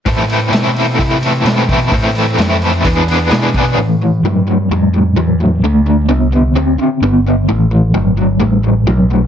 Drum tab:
HH |oooooooo|oooooooo|--------|--------|
SD |--o---o-|--o---o-|--------|--------|
BD |o---o--o|o---o--o|--------|--------|

HH |--------|
SD |--------|
BD |--------|